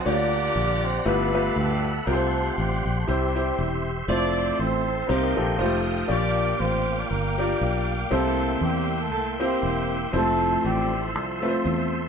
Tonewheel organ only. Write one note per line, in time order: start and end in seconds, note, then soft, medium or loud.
0.00 3.04 F#5 medium
0.06 1.06 G4 medium
0.06 1.06 D5 medium
0.06 1.06 A#5 medium
1.06 2.06 A4 medium
1.06 2.06 E5 medium
1.06 2.06 B5 medium
2.08 4.07 G4 medium
2.08 4.07 C5 medium
2.08 5.07 C6 medium
3.08 5.07 E5 medium
4.10 5.09 A4 medium
4.10 5.09 C5 medium
5.10 5.59 A#4 medium
5.10 5.59 D#5 medium
5.10 10.10 G5 medium
5.10 5.60 C6 medium
5.60 6.10 A4 medium
5.60 8.09 F5 medium
5.60 6.10 D#6 medium
6.11 10.10 A#3 medium
6.11 8.10 D6 medium
8.11 10.11 E5 medium
8.11 12.09 C6 medium
10.14 12.09 A4 medium
10.14 12.09 C5 medium
10.14 12.09 E5 medium